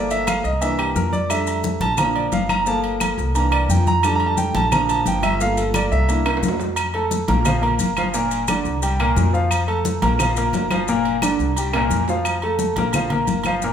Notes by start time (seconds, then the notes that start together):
Already playing: G1 F3 A3 A#3 D5
0.11 E5, high conga, low agogo, maracas
0.27 F5, high conga, low agogo, claves, maracas
0.44 C2 D#5, maracas
0.61 E3 A#3 D4 E5, high conga, low agogo, maracas
0.79 G4, high conga, low agogo, claves
0.96 F2 A#4, high conga, maracas
1.13 D5, high conga, maracas
1.30 G3 A3 D4 E5, high conga, low agogo, claves, maracas
1.46 high conga, low agogo, maracas
1.64 high conga, maracas
1.80 A#1 A5, high conga, low agogo, maracas
1.98 F3 A#3 D4 A#5, high conga, low conga, low agogo, claves, maracas
2.15 D5, high conga, low agogo
2.32 G1 F5, high conga, low agogo, maracas
2.49 A#5, high conga, low agogo, claves, maracas
2.66 F3 A3 A#3 A5, high conga, maracas
2.84 high conga, low agogo
3.00 high conga, low agogo, claves, maracas
3.18 C2, maracas
3.35 E3 A#3 D4 A#5, high conga, low agogo, maracas
3.52 D5, high conga, low agogo, claves
3.69 F2 G5, high conga, maracas
3.87 A#5, high conga, maracas
4.03 G3 A3 D4 A5, high conga, low agogo, claves, maracas
4.16 A#5
4.20 high conga, low agogo
4.26 A5
4.37 G5, high conga, maracas
4.55 A#1 A5, high conga, low agogo, maracas
4.72 F3 A#3 D4 A#5, high conga, low conga, low agogo, claves, maracas
4.89 A5, high conga, low agogo, maracas
5.06 G1 G5, high conga, low agogo, maracas
5.23 E5, high conga, low agogo, claves, maracas
5.40 A3 A#3 F4 F5, high conga, maracas
5.57 A4, high conga, low agogo, maracas
5.74 D5, high conga, low agogo, claves, maracas
5.91 C2 E5, maracas
6.09 A#3 D4 E4, high conga, low agogo, maracas
6.25 high conga, high timbale, low agogo, claves
6.37 high timbale
6.42 F2, high conga, maracas
6.48 low timbale
6.60 low timbale, maracas
6.76 high conga, low agogo, claves, maracas
6.94 A3 A4 A5, high conga, low agogo
7.11 high conga, maracas
7.28 A#1 A#3 A#4 A#5, high conga, low agogo, maracas
7.45 F3 F4 F5, high conga, low conga, low agogo, claves, maracas
7.62 A#3 A#4 A#5, high conga, low agogo
7.79 G1, high conga, low agogo, maracas
7.97 F3 F4 F5, high conga, low agogo, claves, maracas
8.14 A#2 A#3 A#4, high conga, maracas
8.31 high conga, low agogo, maracas
8.48 D3 D4 D5, high conga, low agogo, claves, maracas
8.65 C2, maracas
8.82 G3 G4 G5, high conga, low agogo, maracas
9.00 A#2 A#3 A#4, high conga, low agogo, claves
9.16 F2, high conga, low timbale, maracas
9.33 F3 F4 F5, maracas
9.51 high conga, low agogo, claves, maracas
9.68 A3 A4 A5, high conga, low agogo
9.85 high conga, maracas
10.02 A#1 A#3 A#4 A#5, high conga, low agogo, maracas
10.19 F3 F4 F5, high conga, low conga, low agogo, claves, maracas
10.36 A#3 A#4 A#5, high conga, low agogo, maracas
10.53 G1, high conga, low timbale, low agogo, maracas
10.71 F3 F4 F5, high conga, low agogo, claves, maracas
10.88 A#2 A#3 A#4, high conga, maracas
11.05 high conga, low agogo
11.22 D3 D4 D5, high conga, low agogo, claves, maracas
11.39 C2, maracas
11.56 G3 G4 G5, high conga, low agogo, maracas
11.73 A#2 A#3 A#4, high conga, high timbale, low agogo, claves
11.90 F2, high conga, maracas
12.08 F3 F4 F5, low timbale, maracas
12.25 high conga, low agogo, claves, maracas
12.42 A3 A4 A5, high conga, low agogo
12.59 high conga, maracas
12.76 A#1 A#3 A#4 A#5, high conga, low agogo, maracas
12.93 F3 F4 F5, high conga, low conga, low agogo, claves, maracas
13.10 A#3 A#4 A#5, high conga, low conga, low agogo
13.27 G1, high conga, low agogo, maracas
13.44 F3 F4 F5, high conga, low agogo, claves, maracas
13.62 A#2 A#3 A#4, high conga, maracas